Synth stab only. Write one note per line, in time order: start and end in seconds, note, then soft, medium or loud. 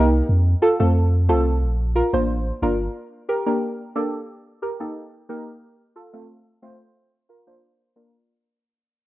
0.62 0.69 F4 medium
0.62 0.69 A4 loud
0.80 0.92 A3 medium
0.80 0.92 C4 medium
0.80 0.93 F4 medium
0.80 0.93 A4 medium
1.29 1.43 A3 medium
1.29 1.43 C4 medium
1.29 1.43 F4 medium
1.29 1.43 A4 loud
1.95 2.03 F4 medium
1.95 2.03 A#4 loud
2.13 2.26 A#3 medium
2.13 2.26 D4 medium
2.13 2.26 F4 medium
2.13 2.26 C5 medium
2.62 2.76 A#3 medium
2.62 2.77 D4 medium
2.62 2.77 F4 medium
2.62 2.77 A#4 loud
3.29 3.36 G4 medium
3.29 3.36 A#4 loud
3.46 3.59 A#3 medium
3.46 3.59 D4 medium
3.46 3.59 G4 medium
3.46 3.59 A#4 medium
3.95 4.10 A#3 medium
3.95 4.10 D4 medium
3.95 4.10 G4 medium
3.95 4.10 A4 loud
4.62 4.69 G4 medium
4.62 4.70 A#4 loud
4.80 4.93 A#3 medium
4.80 4.93 D#4 medium
4.80 4.93 G4 medium
4.80 4.93 A4 medium
5.29 5.43 A#3 medium
5.29 5.43 D#4 medium
5.29 5.43 G4 medium
5.29 5.43 A#4 loud
5.95 6.03 F4 medium
5.95 6.03 A4 loud
6.13 6.26 A3 medium
6.13 6.26 C4 medium
6.13 6.26 F4 medium
6.13 6.26 A4 medium
6.62 6.76 A3 medium
6.62 6.76 C4 medium
6.62 6.76 F4 medium
6.62 6.77 C5 loud
7.29 7.36 F4 medium
7.29 7.36 A#4 loud
7.47 7.59 A#3 medium
7.47 7.59 D4 medium
7.47 7.59 F4 medium
7.47 7.59 C5 medium
7.96 8.10 A#3 medium
7.96 8.10 D4 medium
7.96 8.10 F4 medium
7.96 8.10 A#4 loud